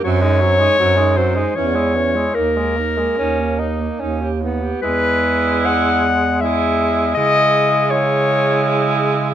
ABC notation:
X:1
M:3/4
L:1/16
Q:1/4=78
K:Elyd
V:1 name="Clarinet"
c6 ^B2 c4 | A8- A2 z2 | B4 f4 e4 | d4 c6 z2 |]
V:2 name="Alto saxophone"
^B, D B, D B, D B, D C E C E | D A, D A, D A, D A, D =G D G | E8 E4 | E4 E8 |]
V:3 name="Tenor saxophone" clef=bass
F, G, F, G, F, G, F, G, E, G, E, G, | A, G, A, G, C2 D2 C2 B,2 | G,8 G,4 | G,4 G,8 |]
V:4 name="Bass clarinet" clef=bass
F,,4 F,,4 E,,4 | D,,4 D,,4 D,,4 | E,,12 | C,12 |]